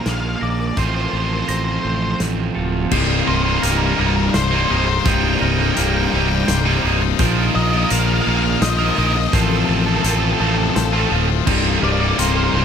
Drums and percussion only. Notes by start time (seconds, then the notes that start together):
0.06 snare, closed hi-hat
0.77 kick, closed hi-hat
1.49 closed hi-hat
2.20 snare, closed hi-hat
2.91 kick, crash
3.63 closed hi-hat
4.34 snare, closed hi-hat
5.06 kick, closed hi-hat
5.77 closed hi-hat
6.48 snare, closed hi-hat
7.19 kick, closed hi-hat
7.91 closed hi-hat
8.62 snare, closed hi-hat
9.33 kick, closed hi-hat
10.05 closed hi-hat
10.76 snare, closed hi-hat
11.47 kick, crash
12.19 closed hi-hat